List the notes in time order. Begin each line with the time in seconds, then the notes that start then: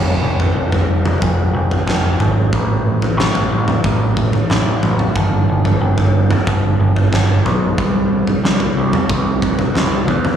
Already playing: F1
0.23 F1
0.40 floor tom
0.55 F1
0.72 floor tom
1.05 mid tom
1.22 F1, kick, floor tom
1.53 F1
1.71 floor tom
1.87 F1, kick, snare
2.20 G#1, floor tom
2.53 A1, kick, floor tom
3.02 floor tom
3.17 A1, snare
3.35 floor tom
3.50 A1
3.68 mid tom
3.84 A1, kick, floor tom
4.17 kick, mid tom
4.33 floor tom
4.50 A1, snare, mid tom
4.83 A1, floor tom
4.99 mid tom
5.16 G1, kick, floor tom
5.49 G1
5.65 floor tom
5.81 G1
5.98 floor tom
6.31 mid tom
6.47 G1, kick, floor tom
6.80 G1
6.96 floor tom
7.12 G1, kick, snare
7.45 B1, floor tom
7.78 C2, kick, floor tom
8.27 floor tom
8.44 C2, snare
8.60 floor tom
8.77 C2
8.93 mid tom
9.10 C2, kick, floor tom
9.42 kick, mid tom
9.59 floor tom
9.74 C2, snare, mid tom
10.08 E2, floor tom
10.25 mid tom